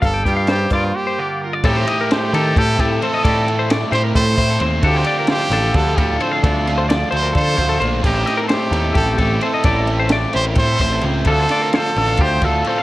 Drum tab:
CC |-------|x------|-------|-------|
RD |-------|-xxxxxx|xxxxxxx|xxxxxxx|
HH |xxxx---|-------|-------|-------|
SD |--o----|--oo---|--ooo--|--ooo--|
BD |oo-o---|o---oo-|o---oo-|o---oo-|

CC |-------|x------|-------|-------|
RD |xxxxxxx|-xxxxxx|xxxxxxx|xxxxxxx|
HH |-------|-------|-------|-------|
SD |-oo----|-oo----|--o--o-|-ooo---|
BD |o---oo-|o---oo-|o---oo-|o---oo-|